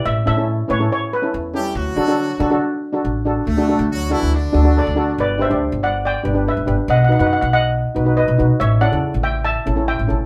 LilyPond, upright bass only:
\new Staff \with { instrumentName = "Upright bass" } { \clef bass \time 4/4 \key g \major \tempo 4 = 140 a,,8 a,4 a,8 r4 e,4 | d,8 d4 d8 r4 a,,4 | d,8. d,4 d,8. d,8. d,8. | g,,8. d,8 g,,4~ g,,16 g,,8. g,,16 g,,16 r16 |
b,,8. fis,8 b,,4~ b,,16 b,,8. b,,16 b,,16 r16 | a,,8. e,8 a,,4~ a,,16 a,,8. a,,16 a,,16 r16 | }